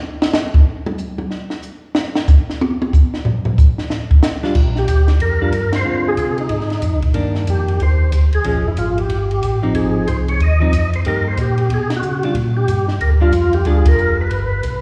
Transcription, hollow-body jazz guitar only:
4.43 G3 D4 F4
5.41 G3 D4 F4
5.84 D3 G#3 C4 F4
7.14 D#3 A#3 D4
8.44 F3 G#3 C#4
9.62 F3 C4 D#4
10.60 F3 C4 D#4
11.06 A#3 D#4 G4
12.24 G3 D4 F4
13.20 G3 D4 F4
13.66 G3 D4 F4

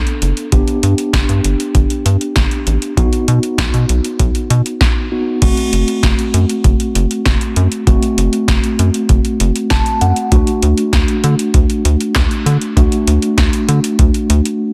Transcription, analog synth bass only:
0.22 F#1
0.52 G1
0.83 G2
1.13 G1
1.29 G2
1.44 G1
1.75 G1
2.05 G2
2.36 G1
2.67 A1
2.97 B1
3.28 B2
3.58 B1
3.74 B2
3.89 B1
4.20 B1
4.50 B2
5.42 F#1
5.73 F#1
6.03 F#1
6.34 F#2
6.64 F#1
6.95 F#1
7.26 F#1
7.56 F#2
7.87 F#1
8.18 F#1
8.48 F#1
8.79 F#2
9.09 F#1
9.40 F#1
9.71 F#1
10.01 F#2
10.32 D2
10.63 D2
10.93 D2
11.24 D3
11.54 D2
11.85 D2
12.16 D2
12.46 D3
12.77 D2
13.07 D2
13.38 D2
13.68 D3
13.99 D2
14.30 D2

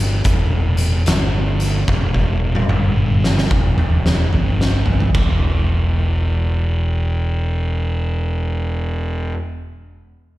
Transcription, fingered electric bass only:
Already playing: G1
0.25 E1
1.06 G1
1.88 E1
2.68 G1
3.51 E1
4.33 G1
5.14 E1

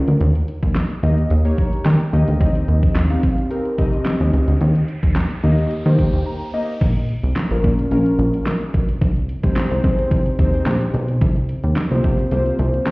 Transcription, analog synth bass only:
0.08 D2
0.21 D#2
0.63 D#2
1.03 D#2
1.31 D#2
1.86 D#3
2.13 D#2
2.28 D2
2.41 D#2
2.68 D#2
2.96 D#2
3.78 C2
4.20 D#2
4.33 C#2
4.48 D2
4.61 D#2
5.03 D#2
5.44 D#2
5.86 D#3
5.99 D#2
6.13 D#2
6.81 A#1
7.23 C2
7.51 A#1
7.64 A#2
7.91 A#1
8.19 A#1
8.74 B1
9.01 C2
9.44 C2
9.71 C2
9.84 C3
10.11 C2
10.39 D#2
10.66 A#1
10.94 B1
11.21 C2
11.64 D#2
11.91 C2
12.04 C3
12.32 C2
12.59 C2

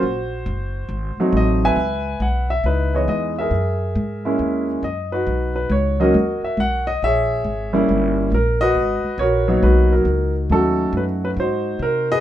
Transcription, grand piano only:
Already playing: F#4 C5
1.20 F#3 A3 C4 D#4
1.37 D#5
1.65 B4 E5 G#5
2.22 F#5
2.50 E5
2.66 D#4 E4 B4
2.94 E3 G#3 B3 C#5 D#5
3.09 D#5
3.38 G#4 A#4 E5
4.25 G#3 A#3 C#4 E4
4.84 D#5
5.12 D#4 F#4 B4
5.56 B4
5.71 C#5
6.00 F#3 A#3 C#4 D#4 F#4 A#4 D#5
6.44 E5
6.60 F#5
6.87 D#5
7.04 G#4 C#5 E5
7.73 G3 A#3 C#4 E4
8.34 A#4
8.61 F#4 B4 D#5
9.19 F#4 A#4 C#5
9.48 F#3 A#3 B3 D#4
9.63 D#4 F#4 B4
9.92 D#4 F#4 A#4
10.51 F#3 A3 C#4 D#4 F#4 A4
10.97 B4
11.25 B4
11.40 D#4 F#4 C5
11.82 A#4
12.12 G#4 B4 D#5

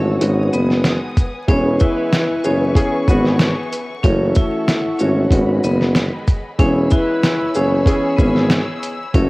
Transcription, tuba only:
Already playing: G#1
0.21 G#1
0.53 F#1
1.48 E1
2.30 F#1
2.45 F#1
3.08 G#1
4.04 F#1
4.85 G#1
5.00 G#1
5.31 G#1
5.64 F#1
6.59 E1
7.41 F#1
7.55 F#1
8.19 G#1
9.14 F#1

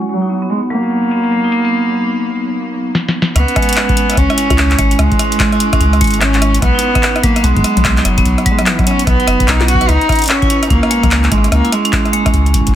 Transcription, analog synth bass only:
3.36 C#2
4.17 C#2
4.50 C#2
4.79 G#1
4.99 C#2
5.81 C#2
6.01 G#1
6.62 B1
7.44 B1
7.77 B1
8.05 F#1
8.26 B1
9.07 B1
9.28 F#1
9.40 F#1
9.48 B1
9.89 C#2
10.70 C#2
11.03 C#2
11.32 G#1
11.52 C#2
12.34 C#2
12.54 G#1

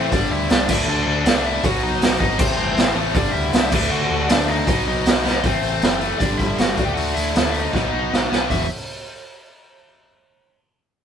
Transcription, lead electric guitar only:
Already playing: C5
0.12 D4 D5
0.31 E4 E5
0.51 D4 D5
0.69 E4 E5
0.89 D4 D5
1.07 D4 D5
1.46 E4 E5
1.64 F#4 F#5
1.83 D#4 D#5
2.20 D#4 D#5
2.38 C4 C5
2.57 C4 C5
3.15 D4 D5
3.32 E4 E5
3.91 F#4 F#5
4.29 D4 D5
4.49 D#4 D#5
4.88 D#4 D#5
5.44 C4 C5
5.62 C4 C5
6.18 D4 D5
6.38 E4 E5
6.47 E4 E5
6.56 F#4 F#5
6.85 G4 G5
6.94 F#4 F#5
7.14 E4 E5
7.52 D#4 D#5
8.50 E5

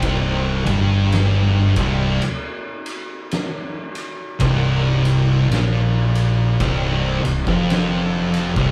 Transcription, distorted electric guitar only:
Already playing: C2
0.67 G2
1.77 C2
4.40 C2
5.50 A#2
6.60 C2
7.24 C2
7.48 F2
8.56 C2

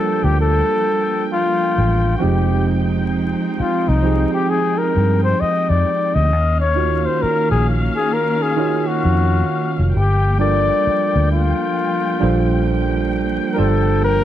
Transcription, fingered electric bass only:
0.24 D2
1.78 A1
2.23 F1
3.60 muted fingered electric bass stroke
3.88 C2
4.97 G2
5.42 muted fingered electric bass stroke
5.70 F2
6.16 D2
6.33 D#2
7.23 muted fingered electric bass stroke
7.52 A#1
9.05 F2
9.79 F1
9.96 G1
10.87 muted fingered electric bass stroke
11.15 D2
12.23 A#1
13.59 G1

